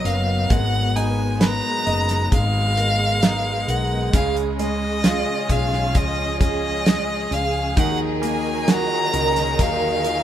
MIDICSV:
0, 0, Header, 1, 7, 480
1, 0, Start_track
1, 0, Tempo, 909091
1, 264, Time_signature, 4, 2, 24, 8
1, 5401, End_track
2, 0, Start_track
2, 0, Title_t, "Violin"
2, 0, Program_c, 0, 40
2, 30, Note_on_c, 0, 77, 91
2, 276, Note_on_c, 0, 78, 109
2, 284, Note_off_c, 0, 77, 0
2, 508, Note_on_c, 0, 80, 95
2, 516, Note_off_c, 0, 78, 0
2, 753, Note_on_c, 0, 82, 102
2, 760, Note_off_c, 0, 80, 0
2, 1228, Note_off_c, 0, 82, 0
2, 1233, Note_on_c, 0, 77, 112
2, 1952, Note_on_c, 0, 78, 91
2, 1960, Note_off_c, 0, 77, 0
2, 2188, Note_off_c, 0, 78, 0
2, 2193, Note_on_c, 0, 77, 91
2, 2298, Note_off_c, 0, 77, 0
2, 2434, Note_on_c, 0, 75, 98
2, 2915, Note_on_c, 0, 77, 87
2, 2923, Note_off_c, 0, 75, 0
2, 3154, Note_on_c, 0, 75, 100
2, 3162, Note_off_c, 0, 77, 0
2, 3384, Note_off_c, 0, 75, 0
2, 3387, Note_on_c, 0, 75, 98
2, 3873, Note_on_c, 0, 77, 86
2, 3881, Note_off_c, 0, 75, 0
2, 4109, Note_off_c, 0, 77, 0
2, 4113, Note_on_c, 0, 78, 92
2, 4219, Note_off_c, 0, 78, 0
2, 4351, Note_on_c, 0, 80, 88
2, 4594, Note_on_c, 0, 82, 109
2, 4602, Note_off_c, 0, 80, 0
2, 5073, Note_on_c, 0, 77, 104
2, 5081, Note_off_c, 0, 82, 0
2, 5401, Note_off_c, 0, 77, 0
2, 5401, End_track
3, 0, Start_track
3, 0, Title_t, "Grand piano"
3, 0, Program_c, 1, 0
3, 0, Control_c, 1, 64, 127
3, 0, Note_on_c, 1, 54, 50
3, 0, Note_on_c, 1, 59, 61
3, 0, Note_on_c, 1, 66, 51
3, 248, Note_off_c, 1, 59, 0
3, 250, Note_off_c, 1, 54, 0
3, 263, Note_on_c, 1, 56, 59
3, 271, Control_c, 1, 64, 0
3, 274, Note_off_c, 1, 66, 0
3, 364, Control_c, 1, 64, 127
3, 505, Note_on_c, 1, 63, 54
3, 739, Note_on_c, 1, 71, 54
3, 983, Note_on_c, 1, 75, 52
3, 1443, Note_off_c, 1, 63, 0
3, 1681, Note_off_c, 1, 71, 0
3, 1706, Note_on_c, 1, 63, 52
3, 1922, Note_off_c, 1, 75, 0
3, 2162, Note_off_c, 1, 56, 0
3, 2170, Note_off_c, 1, 63, 0
3, 2187, Note_on_c, 1, 49, 62
3, 2190, Control_c, 1, 64, 0
3, 2290, Control_c, 1, 64, 127
3, 2424, Note_on_c, 1, 56, 57
3, 2664, Note_on_c, 1, 65, 56
3, 2903, Note_on_c, 1, 68, 55
3, 3363, Note_off_c, 1, 56, 0
3, 3603, Note_off_c, 1, 65, 0
3, 3624, Note_on_c, 1, 56, 50
3, 3842, Note_off_c, 1, 68, 0
3, 4084, Note_off_c, 1, 49, 0
3, 4089, Note_off_c, 1, 56, 0
3, 4100, Note_on_c, 1, 51, 68
3, 4111, Control_c, 1, 64, 0
3, 4216, Control_c, 1, 64, 127
3, 4339, Note_on_c, 1, 58, 55
3, 4586, Note_on_c, 1, 66, 57
3, 4825, Note_on_c, 1, 70, 49
3, 5280, Note_off_c, 1, 58, 0
3, 5401, Note_off_c, 1, 51, 0
3, 5401, Note_off_c, 1, 66, 0
3, 5401, Note_off_c, 1, 70, 0
3, 5401, End_track
4, 0, Start_track
4, 0, Title_t, "Steel-string acoustic guitar"
4, 0, Program_c, 2, 25
4, 0, Note_on_c, 2, 54, 72
4, 0, Note_on_c, 2, 59, 64
4, 0, Note_on_c, 2, 63, 63
4, 27, Note_on_c, 2, 70, 66
4, 264, Note_on_c, 2, 44, 72
4, 266, Note_off_c, 2, 70, 0
4, 268, Note_on_c, 2, 70, 67
4, 313, Note_off_c, 2, 54, 0
4, 504, Note_off_c, 2, 59, 0
4, 506, Note_on_c, 2, 59, 60
4, 737, Note_off_c, 2, 70, 0
4, 744, Note_on_c, 2, 70, 65
4, 911, Note_off_c, 2, 63, 0
4, 984, Note_on_c, 2, 63, 57
4, 1225, Note_on_c, 2, 56, 72
4, 1457, Note_off_c, 2, 70, 0
4, 1464, Note_on_c, 2, 70, 63
4, 1701, Note_off_c, 2, 59, 0
4, 1707, Note_on_c, 2, 59, 60
4, 1937, Note_off_c, 2, 70, 0
4, 1943, Note_on_c, 2, 70, 68
4, 2184, Note_off_c, 2, 44, 0
4, 2184, Note_off_c, 2, 70, 0
4, 2184, Note_on_c, 2, 49, 79
4, 2186, Note_on_c, 2, 68, 70
4, 2232, Note_off_c, 2, 63, 0
4, 2234, Note_off_c, 2, 59, 0
4, 2422, Note_off_c, 2, 56, 0
4, 2422, Note_on_c, 2, 56, 57
4, 2657, Note_off_c, 2, 68, 0
4, 2663, Note_on_c, 2, 68, 64
4, 2904, Note_on_c, 2, 65, 55
4, 3140, Note_on_c, 2, 53, 67
4, 3376, Note_off_c, 2, 68, 0
4, 3382, Note_on_c, 2, 68, 64
4, 3615, Note_off_c, 2, 56, 0
4, 3621, Note_on_c, 2, 56, 66
4, 3858, Note_off_c, 2, 68, 0
4, 3864, Note_on_c, 2, 68, 66
4, 4102, Note_off_c, 2, 49, 0
4, 4104, Note_off_c, 2, 68, 0
4, 4104, Note_on_c, 2, 51, 75
4, 4151, Note_off_c, 2, 56, 0
4, 4343, Note_on_c, 2, 58, 58
4, 4582, Note_off_c, 2, 65, 0
4, 4582, Note_on_c, 2, 65, 62
4, 4824, Note_on_c, 2, 63, 56
4, 4839, Note_off_c, 2, 53, 0
4, 5065, Note_on_c, 2, 54, 67
4, 5297, Note_off_c, 2, 65, 0
4, 5303, Note_on_c, 2, 65, 62
4, 5401, Note_off_c, 2, 51, 0
4, 5401, Note_off_c, 2, 54, 0
4, 5401, Note_off_c, 2, 58, 0
4, 5401, Note_off_c, 2, 63, 0
4, 5401, Note_off_c, 2, 65, 0
4, 5401, End_track
5, 0, Start_track
5, 0, Title_t, "String section"
5, 0, Program_c, 3, 48
5, 0, Note_on_c, 3, 54, 80
5, 0, Note_on_c, 3, 59, 74
5, 0, Note_on_c, 3, 63, 76
5, 240, Note_off_c, 3, 63, 0
5, 266, Note_on_c, 3, 56, 85
5, 2162, Note_off_c, 3, 54, 0
5, 2162, Note_off_c, 3, 59, 0
5, 2180, Note_on_c, 3, 61, 73
5, 2180, Note_on_c, 3, 68, 87
5, 4083, Note_off_c, 3, 61, 0
5, 4084, Note_off_c, 3, 56, 0
5, 4104, Note_on_c, 3, 51, 84
5, 4104, Note_on_c, 3, 63, 74
5, 4104, Note_on_c, 3, 70, 87
5, 4105, Note_on_c, 3, 54, 73
5, 5401, Note_off_c, 3, 51, 0
5, 5401, Note_off_c, 3, 54, 0
5, 5401, Note_off_c, 3, 63, 0
5, 5401, Note_off_c, 3, 68, 0
5, 5401, Note_off_c, 3, 70, 0
5, 5401, End_track
6, 0, Start_track
6, 0, Title_t, "Fretless electric bass"
6, 0, Program_c, 4, 35
6, 24, Note_on_c, 4, 30, 91
6, 247, Note_off_c, 4, 30, 0
6, 266, Note_on_c, 4, 32, 99
6, 844, Note_off_c, 4, 32, 0
6, 986, Note_on_c, 4, 30, 83
6, 1208, Note_off_c, 4, 30, 0
6, 1226, Note_on_c, 4, 32, 98
6, 1924, Note_off_c, 4, 32, 0
6, 1943, Note_on_c, 4, 35, 87
6, 2166, Note_off_c, 4, 35, 0
6, 2183, Note_on_c, 4, 37, 89
6, 2762, Note_off_c, 4, 37, 0
6, 2900, Note_on_c, 4, 35, 91
6, 3141, Note_off_c, 4, 35, 0
6, 3141, Note_on_c, 4, 37, 104
6, 3841, Note_off_c, 4, 37, 0
6, 3861, Note_on_c, 4, 37, 88
6, 4085, Note_off_c, 4, 37, 0
6, 4103, Note_on_c, 4, 39, 100
6, 4682, Note_off_c, 4, 39, 0
6, 4824, Note_on_c, 4, 37, 81
6, 5047, Note_off_c, 4, 37, 0
6, 5065, Note_on_c, 4, 39, 99
6, 5401, Note_off_c, 4, 39, 0
6, 5401, End_track
7, 0, Start_track
7, 0, Title_t, "Drums"
7, 28, Note_on_c, 9, 42, 72
7, 81, Note_off_c, 9, 42, 0
7, 265, Note_on_c, 9, 42, 83
7, 266, Note_on_c, 9, 36, 106
7, 317, Note_off_c, 9, 42, 0
7, 319, Note_off_c, 9, 36, 0
7, 509, Note_on_c, 9, 42, 65
7, 561, Note_off_c, 9, 42, 0
7, 743, Note_on_c, 9, 42, 85
7, 744, Note_on_c, 9, 38, 108
7, 796, Note_off_c, 9, 42, 0
7, 797, Note_off_c, 9, 38, 0
7, 986, Note_on_c, 9, 42, 71
7, 1039, Note_off_c, 9, 42, 0
7, 1103, Note_on_c, 9, 42, 61
7, 1106, Note_on_c, 9, 38, 35
7, 1156, Note_off_c, 9, 42, 0
7, 1159, Note_off_c, 9, 38, 0
7, 1225, Note_on_c, 9, 36, 88
7, 1225, Note_on_c, 9, 42, 79
7, 1278, Note_off_c, 9, 36, 0
7, 1278, Note_off_c, 9, 42, 0
7, 1464, Note_on_c, 9, 42, 77
7, 1517, Note_off_c, 9, 42, 0
7, 1703, Note_on_c, 9, 42, 92
7, 1705, Note_on_c, 9, 38, 115
7, 1756, Note_off_c, 9, 42, 0
7, 1758, Note_off_c, 9, 38, 0
7, 1946, Note_on_c, 9, 42, 72
7, 1998, Note_off_c, 9, 42, 0
7, 2182, Note_on_c, 9, 42, 90
7, 2183, Note_on_c, 9, 36, 115
7, 2235, Note_off_c, 9, 42, 0
7, 2236, Note_off_c, 9, 36, 0
7, 2305, Note_on_c, 9, 42, 49
7, 2358, Note_off_c, 9, 42, 0
7, 2425, Note_on_c, 9, 42, 62
7, 2478, Note_off_c, 9, 42, 0
7, 2661, Note_on_c, 9, 42, 88
7, 2662, Note_on_c, 9, 38, 106
7, 2714, Note_off_c, 9, 38, 0
7, 2714, Note_off_c, 9, 42, 0
7, 2901, Note_on_c, 9, 36, 76
7, 2902, Note_on_c, 9, 42, 67
7, 2954, Note_off_c, 9, 36, 0
7, 2955, Note_off_c, 9, 42, 0
7, 3022, Note_on_c, 9, 38, 35
7, 3075, Note_off_c, 9, 38, 0
7, 3140, Note_on_c, 9, 42, 85
7, 3142, Note_on_c, 9, 36, 86
7, 3193, Note_off_c, 9, 42, 0
7, 3195, Note_off_c, 9, 36, 0
7, 3383, Note_on_c, 9, 36, 93
7, 3384, Note_on_c, 9, 42, 80
7, 3435, Note_off_c, 9, 36, 0
7, 3436, Note_off_c, 9, 42, 0
7, 3623, Note_on_c, 9, 42, 86
7, 3625, Note_on_c, 9, 38, 111
7, 3676, Note_off_c, 9, 42, 0
7, 3678, Note_off_c, 9, 38, 0
7, 3865, Note_on_c, 9, 42, 75
7, 3918, Note_off_c, 9, 42, 0
7, 4102, Note_on_c, 9, 42, 87
7, 4103, Note_on_c, 9, 36, 112
7, 4155, Note_off_c, 9, 42, 0
7, 4156, Note_off_c, 9, 36, 0
7, 4345, Note_on_c, 9, 42, 65
7, 4397, Note_off_c, 9, 42, 0
7, 4582, Note_on_c, 9, 42, 88
7, 4583, Note_on_c, 9, 38, 107
7, 4635, Note_off_c, 9, 38, 0
7, 4635, Note_off_c, 9, 42, 0
7, 4823, Note_on_c, 9, 42, 68
7, 4876, Note_off_c, 9, 42, 0
7, 4943, Note_on_c, 9, 42, 58
7, 4946, Note_on_c, 9, 38, 37
7, 4996, Note_off_c, 9, 42, 0
7, 4999, Note_off_c, 9, 38, 0
7, 5064, Note_on_c, 9, 36, 83
7, 5064, Note_on_c, 9, 42, 83
7, 5116, Note_off_c, 9, 42, 0
7, 5117, Note_off_c, 9, 36, 0
7, 5304, Note_on_c, 9, 42, 80
7, 5357, Note_off_c, 9, 42, 0
7, 5401, End_track
0, 0, End_of_file